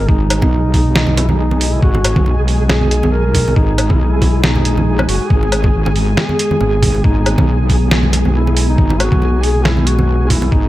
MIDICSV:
0, 0, Header, 1, 6, 480
1, 0, Start_track
1, 0, Key_signature, 5, "minor"
1, 0, Tempo, 434783
1, 94, Time_signature, 4, 2, 24, 8
1, 11797, End_track
2, 0, Start_track
2, 0, Title_t, "Synth texture"
2, 0, Program_c, 0, 99
2, 0, Note_on_c, 0, 68, 88
2, 11797, Note_off_c, 0, 68, 0
2, 11797, End_track
3, 0, Start_track
3, 0, Title_t, "Duduk"
3, 0, Program_c, 1, 69
3, 88, Note_on_c, 1, 63, 105
3, 317, Note_off_c, 1, 63, 0
3, 324, Note_on_c, 1, 63, 106
3, 1245, Note_off_c, 1, 63, 0
3, 1290, Note_on_c, 1, 64, 98
3, 1419, Note_on_c, 1, 63, 86
3, 1436, Note_off_c, 1, 64, 0
3, 1523, Note_off_c, 1, 63, 0
3, 1530, Note_on_c, 1, 63, 89
3, 1902, Note_on_c, 1, 64, 85
3, 1919, Note_off_c, 1, 63, 0
3, 2003, Note_off_c, 1, 64, 0
3, 2010, Note_on_c, 1, 66, 100
3, 2636, Note_off_c, 1, 66, 0
3, 2972, Note_on_c, 1, 68, 108
3, 3449, Note_on_c, 1, 70, 112
3, 3466, Note_off_c, 1, 68, 0
3, 3931, Note_on_c, 1, 63, 110
3, 3948, Note_off_c, 1, 70, 0
3, 4302, Note_on_c, 1, 64, 85
3, 4318, Note_off_c, 1, 63, 0
3, 4410, Note_on_c, 1, 63, 96
3, 4427, Note_off_c, 1, 64, 0
3, 4542, Note_on_c, 1, 64, 96
3, 4558, Note_off_c, 1, 63, 0
3, 4885, Note_off_c, 1, 64, 0
3, 4891, Note_on_c, 1, 63, 98
3, 5569, Note_off_c, 1, 63, 0
3, 5613, Note_on_c, 1, 66, 95
3, 5853, Note_on_c, 1, 68, 97
3, 5870, Note_off_c, 1, 66, 0
3, 6574, Note_off_c, 1, 68, 0
3, 6814, Note_on_c, 1, 68, 123
3, 7774, Note_on_c, 1, 63, 103
3, 7790, Note_off_c, 1, 68, 0
3, 8494, Note_off_c, 1, 63, 0
3, 9217, Note_on_c, 1, 64, 92
3, 9561, Note_off_c, 1, 64, 0
3, 9589, Note_on_c, 1, 63, 100
3, 9938, Note_on_c, 1, 66, 112
3, 9955, Note_off_c, 1, 63, 0
3, 10419, Note_on_c, 1, 68, 112
3, 10435, Note_off_c, 1, 66, 0
3, 10656, Note_on_c, 1, 64, 101
3, 10672, Note_off_c, 1, 68, 0
3, 10894, Note_on_c, 1, 66, 114
3, 10911, Note_off_c, 1, 64, 0
3, 11378, Note_on_c, 1, 64, 97
3, 11394, Note_off_c, 1, 66, 0
3, 11617, Note_on_c, 1, 63, 95
3, 11634, Note_off_c, 1, 64, 0
3, 11797, Note_off_c, 1, 63, 0
3, 11797, End_track
4, 0, Start_track
4, 0, Title_t, "Analog synth pad"
4, 0, Program_c, 2, 89
4, 0, Note_on_c, 2, 56, 78
4, 0, Note_on_c, 2, 75, 76
4, 5856, Note_on_c, 2, 59, 80
4, 5881, Note_off_c, 2, 75, 0
4, 11797, Note_off_c, 2, 56, 0
4, 11797, Note_off_c, 2, 59, 0
4, 11797, End_track
5, 0, Start_track
5, 0, Title_t, "Wobble bass"
5, 0, Program_c, 3, 39
5, 95, Note_on_c, 3, 32, 100
5, 450, Note_off_c, 3, 32, 0
5, 467, Note_on_c, 3, 35, 96
5, 2001, Note_off_c, 3, 35, 0
5, 2015, Note_on_c, 3, 32, 101
5, 2370, Note_off_c, 3, 32, 0
5, 2387, Note_on_c, 3, 35, 93
5, 3921, Note_off_c, 3, 35, 0
5, 3935, Note_on_c, 3, 32, 102
5, 4290, Note_off_c, 3, 32, 0
5, 4307, Note_on_c, 3, 35, 96
5, 5133, Note_on_c, 3, 34, 85
5, 5150, Note_off_c, 3, 35, 0
5, 5600, Note_off_c, 3, 34, 0
5, 5615, Note_on_c, 3, 30, 85
5, 5736, Note_off_c, 3, 30, 0
5, 5855, Note_on_c, 3, 32, 99
5, 6801, Note_off_c, 3, 32, 0
5, 7295, Note_on_c, 3, 32, 96
5, 7761, Note_off_c, 3, 32, 0
5, 7775, Note_on_c, 3, 32, 104
5, 8130, Note_off_c, 3, 32, 0
5, 8148, Note_on_c, 3, 35, 101
5, 9681, Note_off_c, 3, 35, 0
5, 9696, Note_on_c, 3, 32, 102
5, 10050, Note_off_c, 3, 32, 0
5, 10067, Note_on_c, 3, 35, 100
5, 11601, Note_off_c, 3, 35, 0
5, 11616, Note_on_c, 3, 32, 101
5, 11797, Note_off_c, 3, 32, 0
5, 11797, End_track
6, 0, Start_track
6, 0, Title_t, "Drums"
6, 95, Note_on_c, 9, 36, 126
6, 205, Note_off_c, 9, 36, 0
6, 335, Note_on_c, 9, 42, 82
6, 335, Note_on_c, 9, 77, 52
6, 445, Note_off_c, 9, 42, 0
6, 445, Note_off_c, 9, 77, 0
6, 461, Note_on_c, 9, 63, 90
6, 466, Note_on_c, 9, 36, 117
6, 466, Note_on_c, 9, 62, 78
6, 571, Note_off_c, 9, 63, 0
6, 577, Note_off_c, 9, 36, 0
6, 577, Note_off_c, 9, 62, 0
6, 815, Note_on_c, 9, 36, 66
6, 815, Note_on_c, 9, 46, 59
6, 818, Note_on_c, 9, 62, 58
6, 925, Note_off_c, 9, 36, 0
6, 925, Note_off_c, 9, 46, 0
6, 928, Note_off_c, 9, 62, 0
6, 1055, Note_on_c, 9, 38, 126
6, 1165, Note_off_c, 9, 38, 0
6, 1178, Note_on_c, 9, 63, 95
6, 1288, Note_off_c, 9, 63, 0
6, 1297, Note_on_c, 9, 42, 79
6, 1297, Note_on_c, 9, 62, 87
6, 1407, Note_off_c, 9, 42, 0
6, 1407, Note_off_c, 9, 62, 0
6, 1422, Note_on_c, 9, 63, 100
6, 1533, Note_off_c, 9, 63, 0
6, 1670, Note_on_c, 9, 62, 62
6, 1776, Note_on_c, 9, 46, 93
6, 1781, Note_off_c, 9, 62, 0
6, 1887, Note_off_c, 9, 46, 0
6, 2015, Note_on_c, 9, 36, 127
6, 2125, Note_off_c, 9, 36, 0
6, 2148, Note_on_c, 9, 62, 76
6, 2257, Note_on_c, 9, 42, 82
6, 2257, Note_on_c, 9, 77, 49
6, 2258, Note_off_c, 9, 62, 0
6, 2368, Note_off_c, 9, 42, 0
6, 2368, Note_off_c, 9, 77, 0
6, 2386, Note_on_c, 9, 63, 95
6, 2387, Note_on_c, 9, 36, 119
6, 2496, Note_off_c, 9, 63, 0
6, 2496, Note_on_c, 9, 62, 52
6, 2497, Note_off_c, 9, 36, 0
6, 2606, Note_off_c, 9, 62, 0
6, 2737, Note_on_c, 9, 46, 59
6, 2848, Note_off_c, 9, 46, 0
6, 2975, Note_on_c, 9, 38, 121
6, 2975, Note_on_c, 9, 62, 75
6, 3085, Note_off_c, 9, 62, 0
6, 3086, Note_off_c, 9, 38, 0
6, 3106, Note_on_c, 9, 63, 81
6, 3215, Note_on_c, 9, 42, 77
6, 3216, Note_off_c, 9, 63, 0
6, 3326, Note_off_c, 9, 42, 0
6, 3347, Note_on_c, 9, 62, 52
6, 3351, Note_on_c, 9, 63, 97
6, 3457, Note_off_c, 9, 62, 0
6, 3461, Note_off_c, 9, 63, 0
6, 3690, Note_on_c, 9, 64, 85
6, 3694, Note_on_c, 9, 46, 92
6, 3695, Note_on_c, 9, 36, 64
6, 3800, Note_off_c, 9, 64, 0
6, 3805, Note_off_c, 9, 36, 0
6, 3805, Note_off_c, 9, 46, 0
6, 3839, Note_on_c, 9, 62, 71
6, 3934, Note_on_c, 9, 36, 124
6, 3950, Note_off_c, 9, 62, 0
6, 4045, Note_off_c, 9, 36, 0
6, 4172, Note_on_c, 9, 62, 49
6, 4176, Note_on_c, 9, 42, 79
6, 4176, Note_on_c, 9, 77, 50
6, 4283, Note_off_c, 9, 62, 0
6, 4286, Note_off_c, 9, 42, 0
6, 4286, Note_off_c, 9, 77, 0
6, 4301, Note_on_c, 9, 63, 91
6, 4306, Note_on_c, 9, 36, 119
6, 4411, Note_off_c, 9, 63, 0
6, 4417, Note_off_c, 9, 36, 0
6, 4655, Note_on_c, 9, 36, 65
6, 4656, Note_on_c, 9, 46, 59
6, 4656, Note_on_c, 9, 62, 75
6, 4765, Note_off_c, 9, 36, 0
6, 4767, Note_off_c, 9, 46, 0
6, 4767, Note_off_c, 9, 62, 0
6, 4897, Note_on_c, 9, 38, 123
6, 5008, Note_off_c, 9, 38, 0
6, 5028, Note_on_c, 9, 62, 54
6, 5029, Note_on_c, 9, 63, 82
6, 5135, Note_on_c, 9, 42, 76
6, 5138, Note_off_c, 9, 62, 0
6, 5140, Note_off_c, 9, 63, 0
6, 5246, Note_off_c, 9, 42, 0
6, 5270, Note_on_c, 9, 63, 92
6, 5380, Note_off_c, 9, 63, 0
6, 5509, Note_on_c, 9, 77, 66
6, 5512, Note_on_c, 9, 62, 70
6, 5616, Note_on_c, 9, 46, 88
6, 5619, Note_off_c, 9, 77, 0
6, 5622, Note_off_c, 9, 62, 0
6, 5726, Note_off_c, 9, 46, 0
6, 5855, Note_on_c, 9, 36, 121
6, 5965, Note_off_c, 9, 36, 0
6, 5993, Note_on_c, 9, 62, 53
6, 6095, Note_on_c, 9, 42, 76
6, 6095, Note_on_c, 9, 77, 54
6, 6103, Note_off_c, 9, 62, 0
6, 6206, Note_off_c, 9, 42, 0
6, 6206, Note_off_c, 9, 77, 0
6, 6222, Note_on_c, 9, 63, 80
6, 6227, Note_on_c, 9, 36, 111
6, 6332, Note_off_c, 9, 63, 0
6, 6337, Note_off_c, 9, 36, 0
6, 6472, Note_on_c, 9, 62, 85
6, 6576, Note_on_c, 9, 46, 58
6, 6582, Note_off_c, 9, 62, 0
6, 6686, Note_off_c, 9, 46, 0
6, 6815, Note_on_c, 9, 38, 126
6, 6815, Note_on_c, 9, 62, 50
6, 6926, Note_off_c, 9, 38, 0
6, 6926, Note_off_c, 9, 62, 0
6, 6947, Note_on_c, 9, 63, 84
6, 7057, Note_off_c, 9, 63, 0
6, 7058, Note_on_c, 9, 42, 75
6, 7168, Note_off_c, 9, 42, 0
6, 7187, Note_on_c, 9, 63, 98
6, 7292, Note_on_c, 9, 62, 74
6, 7298, Note_off_c, 9, 63, 0
6, 7403, Note_off_c, 9, 62, 0
6, 7534, Note_on_c, 9, 64, 87
6, 7535, Note_on_c, 9, 36, 62
6, 7536, Note_on_c, 9, 46, 90
6, 7644, Note_off_c, 9, 64, 0
6, 7646, Note_off_c, 9, 36, 0
6, 7647, Note_off_c, 9, 46, 0
6, 7668, Note_on_c, 9, 62, 48
6, 7775, Note_on_c, 9, 36, 121
6, 7778, Note_off_c, 9, 62, 0
6, 7886, Note_off_c, 9, 36, 0
6, 8016, Note_on_c, 9, 42, 73
6, 8016, Note_on_c, 9, 77, 57
6, 8127, Note_off_c, 9, 42, 0
6, 8127, Note_off_c, 9, 77, 0
6, 8147, Note_on_c, 9, 36, 109
6, 8148, Note_on_c, 9, 62, 86
6, 8154, Note_on_c, 9, 63, 79
6, 8257, Note_off_c, 9, 36, 0
6, 8259, Note_off_c, 9, 62, 0
6, 8264, Note_off_c, 9, 63, 0
6, 8495, Note_on_c, 9, 36, 62
6, 8497, Note_on_c, 9, 46, 57
6, 8497, Note_on_c, 9, 62, 51
6, 8606, Note_off_c, 9, 36, 0
6, 8607, Note_off_c, 9, 46, 0
6, 8608, Note_off_c, 9, 62, 0
6, 8737, Note_on_c, 9, 38, 117
6, 8847, Note_off_c, 9, 38, 0
6, 8866, Note_on_c, 9, 63, 83
6, 8975, Note_on_c, 9, 62, 73
6, 8976, Note_off_c, 9, 63, 0
6, 8977, Note_on_c, 9, 42, 75
6, 9085, Note_off_c, 9, 62, 0
6, 9087, Note_off_c, 9, 42, 0
6, 9111, Note_on_c, 9, 63, 87
6, 9221, Note_off_c, 9, 63, 0
6, 9355, Note_on_c, 9, 62, 59
6, 9457, Note_on_c, 9, 46, 93
6, 9465, Note_off_c, 9, 62, 0
6, 9567, Note_off_c, 9, 46, 0
6, 9695, Note_on_c, 9, 36, 117
6, 9806, Note_off_c, 9, 36, 0
6, 9829, Note_on_c, 9, 62, 77
6, 9937, Note_on_c, 9, 42, 80
6, 9937, Note_on_c, 9, 77, 55
6, 9939, Note_off_c, 9, 62, 0
6, 10047, Note_off_c, 9, 42, 0
6, 10047, Note_off_c, 9, 77, 0
6, 10067, Note_on_c, 9, 36, 104
6, 10075, Note_on_c, 9, 63, 80
6, 10178, Note_off_c, 9, 36, 0
6, 10178, Note_on_c, 9, 62, 52
6, 10185, Note_off_c, 9, 63, 0
6, 10288, Note_off_c, 9, 62, 0
6, 10416, Note_on_c, 9, 46, 64
6, 10526, Note_off_c, 9, 46, 0
6, 10656, Note_on_c, 9, 38, 107
6, 10660, Note_on_c, 9, 62, 85
6, 10766, Note_off_c, 9, 38, 0
6, 10771, Note_off_c, 9, 62, 0
6, 10786, Note_on_c, 9, 63, 86
6, 10894, Note_on_c, 9, 42, 75
6, 10896, Note_off_c, 9, 63, 0
6, 11004, Note_off_c, 9, 42, 0
6, 11025, Note_on_c, 9, 62, 55
6, 11025, Note_on_c, 9, 63, 86
6, 11136, Note_off_c, 9, 62, 0
6, 11136, Note_off_c, 9, 63, 0
6, 11373, Note_on_c, 9, 46, 91
6, 11374, Note_on_c, 9, 64, 84
6, 11376, Note_on_c, 9, 36, 56
6, 11483, Note_off_c, 9, 46, 0
6, 11484, Note_off_c, 9, 64, 0
6, 11486, Note_off_c, 9, 36, 0
6, 11503, Note_on_c, 9, 62, 73
6, 11613, Note_off_c, 9, 62, 0
6, 11616, Note_on_c, 9, 36, 119
6, 11726, Note_off_c, 9, 36, 0
6, 11797, End_track
0, 0, End_of_file